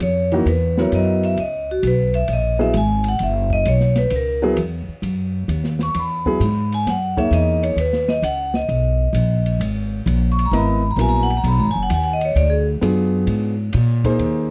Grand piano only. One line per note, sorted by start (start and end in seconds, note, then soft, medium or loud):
0.32 0.45 E3 medium
0.32 0.45 A#3 medium
0.32 0.45 D#4 medium
0.32 0.45 F#4 medium
0.78 1.35 F#3 medium
0.78 1.35 B3 medium
0.78 1.35 E4 medium
0.78 1.35 A#4 medium
2.59 2.72 F#3 medium
2.59 2.73 B3 medium
2.59 2.73 E4 medium
2.59 2.73 G#4 medium
4.42 4.56 F#3 medium
4.42 4.56 B3 medium
4.42 4.56 E4 medium
4.42 4.56 G#4 medium
6.26 6.39 F#3 medium
6.26 6.39 B3 medium
6.26 6.40 E4 medium
6.26 6.40 G#4 medium
7.17 7.75 A#3 medium
7.17 7.75 D#4 medium
7.17 7.75 G#4 medium
7.17 7.75 C#5 medium
10.53 10.81 B3 medium
10.53 10.81 E4 medium
10.53 10.81 A#4 medium
10.53 10.81 D#5 medium
10.97 11.26 F#3 medium
10.97 11.26 B3 medium
10.97 11.26 E4 medium
10.97 11.27 A#4 medium
12.81 13.52 B3 medium
12.81 13.53 D4 medium
12.81 13.53 F4 medium
12.81 13.53 G#4 medium
14.05 14.51 A#3 medium
14.05 14.51 D#4 medium
14.05 14.51 G#4 medium
14.05 14.51 C5 medium